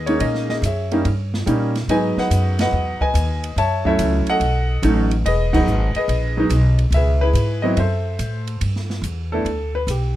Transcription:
Already playing: upright bass D#2, grand piano G#4 B4
0.06 grand piano G#3 A#3 C#4 D#4 C#5, ride
0.20 upright bass A#2, grand piano G#4 D#5, ride
0.35 snare
0.49 grand piano D#5, snare
0.62 upright bass F#2, grand piano E5, hi-hat pedal, ride
0.66 grand piano G#4 C#5
0.91 grand piano G3 A#3 C#4 D#4, ride
1.05 upright bass G2, ride
1.34 snare
1.46 upright bass A#2, grand piano G3 A#3 C#4 D#4, hi-hat pedal, ride
1.75 snare, ride
1.88 upright bass G#2, grand piano F#3 G#3 B3 D#4 B4 D#5 G#5, ride
2.17 grand piano B4 D#5 F#5, muted upright bass stroke, snare
2.30 upright bass F#2, hi-hat pedal, ride
2.59 grand piano B4 D#5 F#5, snare, ride
2.72 upright bass E2
3.01 grand piano B4 D#5 G#5, muted upright bass stroke, kick
3.14 upright bass D#2, hi-hat pedal, ride
3.44 ride
3.56 upright bass F#2, grand piano C#5 E5 A5, ride
3.85 grand piano F#3 A3 C#4 E4 A4 C#5 E5, kick
3.99 upright bass C#2, hi-hat pedal, ride
4.27 grand piano A4 D#5 F#5, muted upright bass stroke, ride
4.40 upright bass B1, ride
4.82 upright bass A1, grand piano F#3 A3 C#4 D#4, hi-hat pedal, ride
5.11 ride
5.24 upright bass E1, grand piano G#4 B4 D#5, ride
5.53 grand piano F#3 G#3 B3 D#4 B4 D#5 F#5, kick, crash
5.66 upright bass G#1, hi-hat pedal
5.95 grand piano G#4 B4 D#5, muted upright bass stroke, ride
6.08 upright bass A#1, ride
6.37 grand piano F#3 G#3 B3 D#4
6.49 upright bass B1, hi-hat pedal, ride
6.79 ride
6.91 upright bass C#2, grand piano E5, ride
6.96 grand piano G#4 B4
7.21 grand piano E4 G#4 B4
7.33 upright bass G#2, hi-hat pedal, ride
7.62 grand piano F#3 B3 C4 E4 D#5
7.77 upright bass F#2, grand piano A4 C5 E5, ride
8.19 upright bass A2, hi-hat pedal, ride
8.47 ride
8.61 upright bass G2, ride
8.76 snare
8.90 snare
9.02 upright bass E2, hi-hat pedal, ride
9.32 grand piano A3 B3 D4 E4 A4
9.45 upright bass D2, ride
9.75 grand piano B4
9.87 upright bass B1, grand piano G4, hi-hat pedal, ride

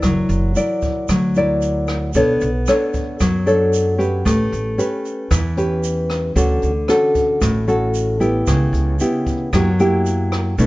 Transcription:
Already playing: nylon-string guitar E4 A#4 D5
0.03 upright bass F#1, nylon-string guitar F#3, kick, cross-stick, closed hi-hat, shaker
0.29 upright bass F#1, closed hi-hat, shaker
0.56 nylon-string guitar E4 A#4 D5, closed hi-hat, shaker
0.82 kick, closed hi-hat, shaker
1.08 upright bass D2, nylon-string guitar F#3, kick, cross-stick, closed hi-hat, shaker
1.35 nylon-string guitar E4 A#4 D5, closed hi-hat, shaker
1.62 closed hi-hat, shaker
1.87 cross-stick, closed hi-hat, shaker
2.14 upright bass B1, nylon-string guitar B3 D4 A4 C#5, kick, closed hi-hat, shaker
2.41 upright bass B1, closed hi-hat, shaker
2.66 nylon-string guitar D4 A4 C#5, cross-stick, closed hi-hat, shaker
2.94 kick, closed hi-hat, shaker
3.20 upright bass F#2, nylon-string guitar F#3, kick, cross-stick, closed hi-hat, shaker
3.46 nylon-string guitar D4 A4 C#5, closed hi-hat, shaker
3.73 closed hi-hat, shaker
3.98 nylon-string guitar C#4 G4 B4, closed hi-hat, shaker
4.25 upright bass A1, nylon-string guitar A3, kick, cross-stick, closed hi-hat, shaker
4.52 upright bass A1, closed hi-hat, shaker
4.78 nylon-string guitar C#4 G4 B4, closed hi-hat, shaker
5.05 closed hi-hat, shaker
5.31 upright bass E2, nylon-string guitar E3, kick, cross-stick, closed hi-hat, shaker
5.57 nylon-string guitar C#4 G4 B4, closed hi-hat, shaker
5.83 closed hi-hat, shaker
6.10 cross-stick, closed hi-hat, shaker
6.36 upright bass D2, nylon-string guitar D3 C#4 F#4 A4, kick, closed hi-hat, shaker
6.62 upright bass D2, closed hi-hat, shaker
6.88 nylon-string guitar C#4 F#4 A4, cross-stick, closed hi-hat, shaker
7.15 kick, closed hi-hat, shaker
7.41 upright bass A1, nylon-string guitar A2, kick, cross-stick, closed hi-hat, shaker
7.68 nylon-string guitar C#4 F#4 A4, closed hi-hat, shaker
7.94 closed hi-hat, shaker
8.20 nylon-string guitar B3 E4 G4, closed hi-hat, shaker
8.47 upright bass C#2, nylon-string guitar C#3, kick, cross-stick, closed hi-hat, shaker
8.73 upright bass C#2, closed hi-hat, shaker
9.00 nylon-string guitar B3 E4 G4, closed hi-hat, shaker
9.26 kick, closed hi-hat, shaker
9.53 upright bass F#2, nylon-string guitar F#3 A#3 E4 G4, kick, cross-stick, closed hi-hat, shaker
9.79 nylon-string guitar A#3 E4 G4, closed hi-hat, shaker
10.06 closed hi-hat, shaker
10.32 cross-stick, closed hi-hat, shaker
10.58 upright bass B1, nylon-string guitar B2 A3 D4 E4, kick, closed hi-hat, shaker

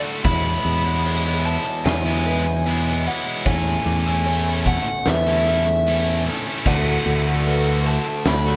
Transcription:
Already playing: distorted electric guitar D2 A2, harmonium D3 A3 F#4
0.04 distorted electric guitar D3 A3 F#4
0.24 distorted electric guitar E2 B2 E3 G#3 B3 E4, fingered electric bass E2, harmonium F#3 G#3 E4, felt piano E5, overdriven electric guitar B5, kick, open hi-hat
0.65 fingered electric bass E2
0.85 distorted electric guitar E3 G#3 B3 E4
1.04 distorted electric guitar E2 B2 E3 G#3 B3 E4, felt piano C#5, open hi-hat
1.26 distorted electric guitar E3 G#3 B3 E4
1.46 overdriven electric guitar A5
1.65 muted distorted electric guitar stroke
1.85 fingered electric bass E2, overdriven electric guitar G#5, snare, open hi-hat
2.06 distorted electric guitar E3 G#3 B3 E4
2.25 distorted electric guitar E3 G#3 B3 E4, felt piano B4
2.46 muted distorted electric guitar stroke
2.66 distorted electric guitar E2 B2 E3 G#3 B3 E4, open hi-hat
3.05 distorted electric guitar E3 G#3 B3 E4, overdriven electric guitar F#5
3.26 distorted electric guitar E3 G#3 B3 E4
3.45 fingered electric bass E2, distorted electric guitar A2 E3 A3 C#4 E4 A4, harmonium A3 C#4, felt piano C#5, overdriven electric guitar G#5, kick, open hi-hat
3.86 fingered electric bass E2, felt piano D6
4.06 distorted electric guitar A3 C#4 E4 A4
4.26 distorted electric guitar A2 E3 A3 C#4 E4 A4, felt piano C#5, open hi-hat
4.47 distorted electric guitar A3 C#4 E4 A4
4.66 overdriven electric guitar F#5, kick
4.88 muted distorted electric guitar stroke
5.06 fingered electric bass E2, felt piano B4, overdriven electric guitar E5, snare, open hi-hat
5.27 distorted electric guitar A3 C#4 E4 A4
5.46 distorted electric guitar A3 C#4 E4 A4, felt piano A4
5.67 muted distorted electric guitar stroke
5.86 distorted electric guitar A2 E3 A3 C#4 E4 A4, open hi-hat
6.26 distorted electric guitar A3 C#4 E4 A4, snare
6.47 distorted electric guitar A3 C#4 E4 A4
6.66 fingered electric bass D2, distorted electric guitar D2 A2 D3 A3 F#4, harmonium D3 F#4, felt piano D5, overdriven electric guitar F#5, kick, crash
7.06 fingered electric bass D2
7.27 distorted electric guitar D3 A3 F#4
7.46 distorted electric guitar D2 A2 D3 A3 F#4, felt piano B4, open hi-hat
7.67 distorted electric guitar D3 A3 F#4
7.87 overdriven electric guitar A5
8.07 muted distorted electric guitar stroke
8.25 fingered electric bass D2, overdriven electric guitar B5, snare, open hi-hat
8.47 distorted electric guitar D3 A3 F#4

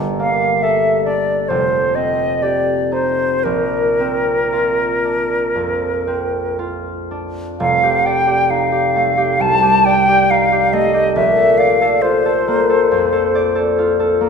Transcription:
Already playing: harp G1 A3
0.19 harp A#3, flute F5
0.62 harp A4, flute E5
1.05 harp D4, flute D5
1.49 harp F1, flute C5
1.95 harp C4, flute D#5
2.42 harp G4, flute D5
2.92 harp D#4, flute C5
3.44 harp A#1, flute A#4
3.99 harp C4
4.52 harp F4
5.05 harp D4
5.55 harp F2
6.07 harp C4
6.59 harp F4
7.11 harp D4
7.60 harp F1, flute F5
7.83 harp G4
8.06 harp D5, flute G5
8.27 harp G4
8.50 harp D#4, flute F5
8.72 harp G4
8.96 harp A3
9.17 harp G4
9.40 harp C2, flute A5
9.62 harp G4
9.85 harp D5, flute G5
10.09 harp G4
10.30 harp D#4, flute F5
10.52 harp G4
10.73 harp A3, flute D#5
10.94 harp G4
11.15 harp A#1, flute E5
11.37 harp A4
11.58 harp D5, flute F5
11.81 harp A4
12.02 harp F4, flute C5
12.26 harp A4
12.48 harp A#3
12.69 harp A4
12.91 harp F2
13.12 harp A4
13.35 harp D5
13.55 harp A4
13.78 harp F4
14.00 harp A4
14.21 harp A#3

